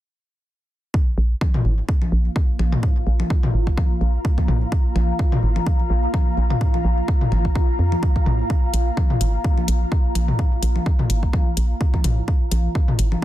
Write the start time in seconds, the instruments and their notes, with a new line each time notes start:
0.94 ambient pad A#3, kick
1.18 fm bass A#1
1.28 ambient pad F5
1.41 kick, high conga
1.51 ambient pad F4, mid tom
1.65 fm bass G#1
1.89 kick
2.02 high conga
2.12 fm bass A#1, ambient pad A#5
2.36 kick
2.59 fm bass A#1, high conga
2.72 mid tom
2.83 kick
3.07 fm bass A#1
3.20 high conga
3.30 kick
3.43 mid tom
3.54 fm bass G#1
3.67 kick
3.78 kick, high conga
4.01 fm bass A#1
4.25 kick
4.38 kick, high conga
4.48 fm bass A#1, mid tom
4.72 kick
4.96 fm bass A#1, high conga
5.19 kick
5.32 mid tom
5.43 fm bass G#1
5.56 high conga
5.67 kick
5.90 fm bass A#1
6.14 kick, high conga
6.37 fm bass A#1
6.50 mid tom
6.61 kick
6.74 high conga
6.85 fm bass A#1
7.08 kick
7.21 mid tom
7.32 fm bass G#1, high conga
7.45 kick
7.55 kick
7.79 fm bass F2
7.92 high conga
8.03 kick
8.16 kick
8.26 fm bass A#1, mid tom
8.50 kick
8.74 fm bass A#1, closed hi-hat
8.97 kick, high conga
9.10 mid tom
9.21 fm bass G#1, closed hi-hat
9.44 kick
9.58 high conga
9.68 fm bass A#1, closed hi-hat
9.92 kick
10.15 fm bass A#1, closed hi-hat, high conga
10.28 mid tom
10.39 kick
10.63 fm bass A#1, closed hi-hat
10.76 high conga
10.86 kick
10.99 mid tom
11.10 fm bass G#1, closed hi-hat
11.23 kick
11.33 kick, high conga
11.57 fm bass A#1, closed hi-hat
11.81 kick
11.94 kick, high conga
12.04 fm bass A#1, closed hi-hat, mid tom
12.28 kick
12.52 fm bass A#1, closed hi-hat, high conga
12.75 kick
12.88 mid tom
12.99 fm bass G#1, closed hi-hat
13.12 high conga